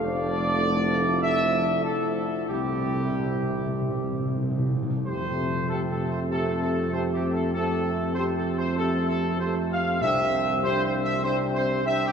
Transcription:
Already playing: A3 F4
0.00 F1 D3 F3 D5
0.59 E4
1.22 E5
1.84 A4
2.48 C2 C3 G3 C4 G4
2.56 C3
2.64 C3
2.72 C3
2.79 C3
2.88 C3
2.95 C3
3.04 C3
3.13 C3
3.19 C3
3.27 C3
3.35 C3
3.42 C3
3.59 C3
3.66 C3
3.74 C3
3.82 C3
3.89 C3
3.97 C3
4.04 C3
4.12 C3
4.20 C3
4.28 C3
4.35 C3
4.43 C3
4.51 C3
4.59 C3
4.66 C3
4.75 C3
4.83 C3
4.90 C3
5.06 F2 C3 A3 C4 G4 C5
5.68 C3 A3 C4 G4 A4
5.91 A4
6.11 C5
6.29 C3 A3 C4 G4 A4
6.63 A4
6.93 C3 A3 C4 G4 C5
7.14 G4
7.33 A4
7.54 C3 A3 C4 G4 A4
8.15 C3 A3 C4 G4 C5
8.38 A4
8.58 C5
8.78 C3 A3 C4 G4 A4
9.09 A4
9.40 C3 A3 C4 G4 C5
9.72 F5
10.01 C2 C3 C4 D4 G4 E5
10.63 C3 C4 D4 G4 C5
10.85 C5
11.04 E5
11.22 C3 C4 D4 G4 C5
11.55 C5
11.85 C3 C4 D4 G4 E5
12.06 G4

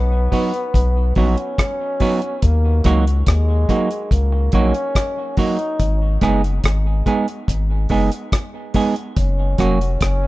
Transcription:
Already playing: B1 B3
0.32 F#3 B3 D#4 F#4, kick, open hi-hat
0.54 closed hi-hat
0.74 B1, kick, closed hi-hat
1.15 A#1 F#3 B3 C#4 D#4 F#4, kick, open hi-hat
1.38 closed hi-hat
1.58 kick, cross-stick, closed hi-hat
2.00 F#3 B3 D#4 F#4, kick, open hi-hat
2.22 closed hi-hat
2.42 D#2 A#3, kick, closed hi-hat
2.84 C#2 F#3 A#3 D#4 F#4, kick, cross-stick, closed hi-hat
3.07 closed hi-hat
3.27 D#2 G#3, kick, cross-stick, closed hi-hat
3.69 F#3 A#3 D#4 F#4, kick, closed hi-hat
3.91 closed hi-hat
4.11 C#2 A#3, kick, closed hi-hat
4.32 muted clean electric guitar stroke
4.52 A#1 F#3 A#3 C#4 D#4 F#4, kick, closed hi-hat
4.74 closed hi-hat
4.95 kick, cross-stick, closed hi-hat
5.37 F#3 A#3 D#4 F#4, kick, open hi-hat
5.59 closed hi-hat
5.80 G#1, kick, closed hi-hat
6.21 F#1 G#3 B3 D#4 G#4, kick, cross-stick, closed hi-hat
6.44 closed hi-hat
6.64 G#1, kick, cross-stick, closed hi-hat
7.06 G#3 B3 D#4 G#4, kick, closed hi-hat
7.28 closed hi-hat
7.48 G#1, kick, closed hi-hat
7.89 F#1 G#3 B3 D#4 G#4, kick, open hi-hat
8.12 closed hi-hat
8.32 kick, cross-stick, closed hi-hat
8.74 G#3 B3 D#4 G#4, kick, open hi-hat
8.96 closed hi-hat
9.16 F#1 C#4, kick, closed hi-hat
9.58 F1 F#3 A#3 C#4 F#4, kick, cross-stick, closed hi-hat
9.81 closed hi-hat
10.01 F#1 C#4, kick, cross-stick, closed hi-hat

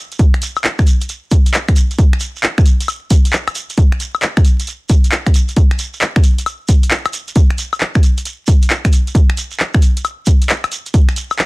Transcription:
0.12 closed hi-hat, shekere
0.19 kick, closed hi-hat, shekere
0.34 finger snap, closed hi-hat
0.42 open hi-hat, shekere
0.56 high woodblock, shekere
0.64 clap, shekere
0.79 finger snap, kick, shekere
0.87 open hi-hat, shekere
1.01 closed hi-hat, shekere
1.09 closed hi-hat, shekere
1.31 kick, open hi-hat, shekere
1.46 closed hi-hat, shekere
1.54 clap, shekere
1.68 finger snap, kick, closed hi-hat, shekere
1.76 open hi-hat, shekere
1.91 closed hi-hat, shekere
1.99 kick, closed hi-hat, shekere
2.13 finger snap, closed hi-hat
2.20 open hi-hat, shekere
2.36 shekere
2.43 clap, shekere
2.58 finger snap, kick, shekere
2.66 open hi-hat, shekere
2.80 closed hi-hat, shekere
2.88 closed hi-hat, high woodblock, shekere
3.10 kick, open hi-hat, shekere
3.25 closed hi-hat, shekere
3.33 clap, shekere
3.48 finger snap, closed hi-hat, high woodblock, shekere
3.55 open hi-hat, shekere
3.70 closed hi-hat, shekere
3.78 kick, closed hi-hat, shekere
3.92 finger snap, closed hi-hat
4.00 open hi-hat, shekere
4.14 high woodblock, shekere
4.22 clap, shekere
4.37 finger snap, kick, shekere
4.45 open hi-hat, shekere
4.60 closed hi-hat, shekere
4.67 closed hi-hat, shekere
4.89 kick, open hi-hat, shekere
5.04 closed hi-hat, shekere
5.12 clap, shekere
5.26 finger snap, kick, closed hi-hat, shekere
5.34 open hi-hat, shekere
5.48 closed hi-hat, shekere
5.57 kick, closed hi-hat, shekere
5.71 finger snap, closed hi-hat
5.79 open hi-hat, shekere
5.93 shekere
6.01 clap, shekere
6.16 finger snap, kick, shekere
6.23 open hi-hat, shekere
6.38 closed hi-hat, shekere
6.46 closed hi-hat, high woodblock, shekere
6.68 kick, open hi-hat, shekere
6.83 closed hi-hat, shekere
6.91 clap, shekere
7.05 finger snap, closed hi-hat, high woodblock, shekere
7.13 open hi-hat, shekere
7.28 closed hi-hat, shekere
7.36 kick, closed hi-hat, shekere
7.50 finger snap, closed hi-hat
7.58 open hi-hat, shekere
7.73 high woodblock, shekere
7.80 clap, shekere
7.95 finger snap, kick, shekere
8.03 open hi-hat, shekere
8.17 closed hi-hat, shekere
8.25 closed hi-hat, shekere
8.47 kick, open hi-hat, shekere
8.62 closed hi-hat, shekere
8.70 clap, shekere
8.85 finger snap, kick, closed hi-hat, shekere
8.93 open hi-hat, shekere
9.07 closed hi-hat, shekere
9.15 kick, closed hi-hat, shekere
9.30 finger snap, closed hi-hat
9.37 open hi-hat, shekere
9.51 shekere
9.59 clap, shekere
9.74 finger snap, kick, shekere
9.82 open hi-hat, shekere
9.97 closed hi-hat, shekere
10.04 closed hi-hat, high woodblock, shekere
10.26 kick, open hi-hat, shekere
10.42 closed hi-hat, shekere
10.49 clap, shekere
10.64 finger snap, closed hi-hat, high woodblock, shekere
10.72 open hi-hat, shekere
10.86 closed hi-hat, shekere
10.94 kick, closed hi-hat, shekere
11.09 finger snap, closed hi-hat, shekere
11.16 open hi-hat, shekere
11.30 high woodblock, shekere
11.39 clap, shekere

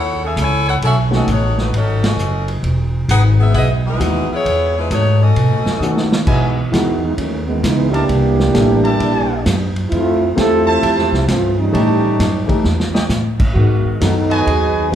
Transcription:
Already playing: D#2 E4 A4 C#5 F#5
0.24 C#4 G#4 A4 E5
0.36 C#2 E4, kick, hi-hat pedal, ride
0.41 A4 C#5 G#5
0.68 E4 A4 C#5 F#5
0.82 B1 C#4 F#4 A4 E5, kick, ride
1.10 D#3 A3 B3 C#4 F#4 A4 D#5, snare
1.15 C#4
1.27 A1, kick, hi-hat pedal, ride
1.31 A3 D#4 F#4 C#5
1.58 A3 D#4 F#4 B4, snare
1.72 G#1 F#3 C#4 D#4 A4, kick, ride
2.03 C#4 F#4 A4 D#5, snare, ride
2.17 F#1, hi-hat pedal
2.48 ride
2.63 E1, kick, ride
3.08 G#1 D#4 G#4 B4 F#5, kick, hi-hat pedal, ride
3.40 B3 D#4 G#4 E5
3.54 B1 B3 E4 G#4 D#5, kick, ride
3.86 G#3 D#4 E4 B4
3.98 D#2 E3 G#3 B3 D#4 F#4, kick, hi-hat pedal, ride
4.30 B3 E4 G#4 C#5, muted upright bass stroke
4.45 E2, kick, ride
4.77 G#3 D#4 E4 B4
4.91 G#2 A3 D#4 F#4 C#5, kick, hi-hat pedal, ride
5.21 C#4 F#4 A4 D#5
5.36 B2, kick, ride
5.51 A2
5.65 F#2, snare
5.80 D#3 A3 B3 C#4 F#4, hi-hat pedal
5.97 snare
6.12 snare
6.26 B2 E3 G#3 B3 D#4 E4 F#4 B4 D#5 G#5, kick, crash
6.71 E2 D#3 E3 G#3 B3 D#4 E4 F#4, kick, snare, hi-hat pedal, ride
7.01 E3 G#3 B3 D#4
7.17 D#2 D#3 F#3 A3 C#4, kick, ride
7.47 D#3 E3 G#3 B3
7.62 C#2 E3 G#3 B3 D#4, kick, snare, hi-hat pedal, ride
7.91 E3 A#3 D4 E4 G4 A#4 D5 A5, ride
8.09 C2, kick, ride
8.39 snare
8.53 A1 G3 A#3 D4 E4 A4, kick, snare, hi-hat pedal, ride
8.84 E4 D5 A5, ride
9.00 A#1, kick, ride
9.46 F#2, kick, snare, hi-hat pedal, ride
9.76 ride
9.90 F2 A3 C4 E4 F4, kick, ride
10.35 E2 A3 C4 E4 F4 G4 A4, kick, snare, hi-hat pedal, ride
10.66 C5 E5 A5
10.83 F2 F3 C4 E4 G4, kick, ride
10.97 E2, snare
11.12 C2, snare
11.28 G2 E3 A3 C4 F4, kick, snare, hi-hat pedal, ride
11.59 G3 A3 C#4 D#4
11.71 A2 E3 A3 C#4 D#4 G4 C#5 D#5 A5, kick, ride
12.19 F#2, kick, snare, hi-hat pedal, ride
12.46 E3 A3 C#4 D#4 G4, kick, ride
12.64 E2, snare
12.80 snare
12.94 G4 C#5 D#5 G5, snare
13.09 A2, snare, hi-hat pedal
13.39 kick, crash
13.54 G#2 D#3 G#3 B3 F#4, kick
13.85 muted upright bass stroke
14.00 F#2 D#3 F#3 B3 D#4 F#4 A4, kick, snare, hi-hat pedal, ride
14.30 F#4 B4 D#5 G#5, ride
14.46 D#2 F#3 B3 D#4 G#4, kick, ride
14.91 G#3 D#4 F#4 B4

